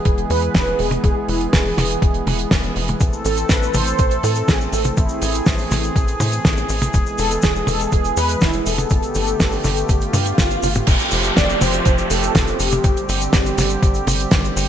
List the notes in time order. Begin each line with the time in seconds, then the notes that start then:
Already playing: E3 G#3 B3 G#4
0.05 E1 G#4, kick, closed hi-hat
0.18 closed hi-hat
0.30 E2 B4, open hi-hat
0.42 closed hi-hat
0.54 E1 B4, kick, snare, closed hi-hat
0.67 closed hi-hat
0.79 E1 G#4, open hi-hat
0.91 closed hi-hat, high tom
1.04 E1 G#4, kick, closed hi-hat
1.28 E1 E4, open hi-hat
1.41 closed hi-hat
1.53 E1 G#4, kick, snare, closed hi-hat
1.65 open hi-hat
1.77 E1, snare, open hi-hat, high tom
1.91 closed hi-hat
2.02 E1, kick, closed hi-hat
2.14 closed hi-hat
2.27 E1, open hi-hat, high tom
2.39 closed hi-hat
2.51 E1, kick, snare, closed hi-hat
2.63 closed hi-hat
2.76 E1, open hi-hat
2.88 closed hi-hat, high tom
3.00 A1 A3 C4 A4, kick, closed hi-hat, cabasa
3.13 cabasa
3.24 A1 A4, open hi-hat, cabasa
3.37 closed hi-hat, cabasa
3.49 A1 B4, kick, snare, closed hi-hat, cabasa
3.63 cabasa
3.74 A1 C5, open hi-hat, high tom, cabasa
3.87 closed hi-hat, cabasa
3.99 A1, kick, closed hi-hat, cabasa
4.11 closed hi-hat, cabasa
4.23 A2 A4, open hi-hat, cabasa
4.35 closed hi-hat, cabasa
4.48 A1 G#4, kick, snare, closed hi-hat, cabasa
4.61 closed hi-hat, cabasa
4.72 A1 A4, open hi-hat, cabasa
4.85 closed hi-hat, high tom, cabasa
4.97 A1 E4 G#4, kick, closed hi-hat, cabasa
5.09 cabasa
5.22 A1, open hi-hat, cabasa
5.34 closed hi-hat, cabasa
5.46 A1, kick, snare, closed hi-hat, cabasa
5.58 open hi-hat, cabasa
5.71 A1, snare, open hi-hat, high tom, cabasa
5.83 closed hi-hat, cabasa
5.96 A1, kick, closed hi-hat, cabasa
6.08 closed hi-hat, cabasa
6.20 A2, open hi-hat, high tom, cabasa
6.32 closed hi-hat, cabasa
6.45 A1, kick, snare, closed hi-hat, cabasa
6.57 closed hi-hat, cabasa
6.69 A1, open hi-hat, cabasa
6.82 closed hi-hat, high tom, cabasa
6.94 E1 E3 G#3 B3, kick, closed hi-hat, cabasa
7.07 cabasa
7.18 E1 A4, open hi-hat, cabasa
7.31 closed hi-hat, cabasa
7.42 E1 G#4, kick, snare, closed hi-hat, cabasa
7.56 cabasa
7.67 E1 A4, open hi-hat, high tom, cabasa
7.79 closed hi-hat, cabasa
7.92 E1 G#4, kick, closed hi-hat, cabasa
8.05 closed hi-hat, cabasa
8.17 E2 B4, open hi-hat, cabasa
8.29 closed hi-hat, cabasa
8.41 E1 E4, kick, snare, closed hi-hat, cabasa
8.53 closed hi-hat, cabasa
8.66 E1 A4, open hi-hat, cabasa
8.78 closed hi-hat, high tom, cabasa
8.90 G1 D3 A3 G4, kick, closed hi-hat, cabasa
9.02 closed hi-hat, cabasa
9.15 G1, open hi-hat, cabasa
9.27 closed hi-hat, cabasa
9.40 G1, kick, snare, closed hi-hat, cabasa
9.52 open hi-hat, cabasa
9.64 G1, snare, open hi-hat, high tom, cabasa
9.77 closed hi-hat, cabasa
9.89 G1, kick, closed hi-hat, swell, cabasa
10.01 closed hi-hat, cabasa
10.13 G2, open hi-hat, high tom, cabasa
10.26 closed hi-hat, cabasa
10.38 G1, kick, snare, closed hi-hat, cabasa
10.50 closed hi-hat, cabasa
10.63 G1, open hi-hat, high tom, cabasa
10.75 closed hi-hat, mid tom, cabasa
10.87 F1 F3 A3 C4 G4, kick, closed hi-hat, crash, downlifter, cabasa
11.00 closed hi-hat, cabasa
11.11 F1, open hi-hat, cabasa
11.24 closed hi-hat, cabasa
11.36 F1 D5, kick, snare, closed hi-hat, cabasa
11.50 closed hi-hat, cabasa
11.61 F1 C5, open hi-hat, high tom, cabasa
11.73 closed hi-hat, cabasa
11.85 F1, kick, closed hi-hat, cabasa
11.98 closed hi-hat, cabasa
12.10 F1 A4, open hi-hat, cabasa
12.23 closed hi-hat, cabasa
12.35 F1, kick, snare, closed hi-hat, cabasa
12.47 closed hi-hat, cabasa
12.60 F1 G4, open hi-hat, cabasa
12.72 closed hi-hat, high tom, cabasa
12.84 G1 D3 G3 G4, kick, closed hi-hat, cabasa
12.97 closed hi-hat, cabasa
13.09 G1, open hi-hat, cabasa
13.21 closed hi-hat, cabasa
13.33 G1, kick, snare, closed hi-hat, cabasa
13.46 closed hi-hat, cabasa
13.58 G1, snare, open hi-hat, high tom, cabasa
13.69 closed hi-hat, cabasa
13.83 G1, kick, closed hi-hat, cabasa
13.94 closed hi-hat, cabasa
14.07 G1, open hi-hat, high tom, cabasa
14.20 closed hi-hat, cabasa
14.31 G1, kick, snare, closed hi-hat, cabasa
14.44 closed hi-hat, cabasa
14.56 G1, open hi-hat, cabasa